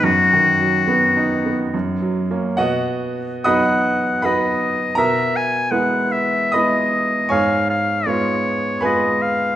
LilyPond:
<<
  \new Staff \with { instrumentName = "Oboe" } { \time 3/4 \key b \major \tempo 4 = 76 fis'2 r4 | r4 fis''4 dis''4 | e''8 gis''8 fis''8 e''8 dis''4 | eis''8 eis''8 cis''4 dis''8 eis''8 | }
  \new Staff \with { instrumentName = "Grand piano" } { \time 3/4 \key b \major r2. | <fis' dis'' fis''>4 <dis'' b'' dis'''>4 <b' fis'' b''>4 | <ais' ais''>2 <dis'' b'' dis'''>4 | <cis'' gis'' cis'''>2 <b' gis'' b''>4 | }
  \new Staff \with { instrumentName = "Grand piano" } { \time 3/4 \key b \major \tuplet 3/2 { fis,8 dis8 fis8 b8 dis'8 b8 fis,8 fis8 <ais cis'>8 } | b,4 <fis b dis'>4 <fis b dis'>4 | b,4 <gis b e'>4 <gis b e'>4 | gis,4 <gis b eis'>4 <gis b eis'>4 | }
>>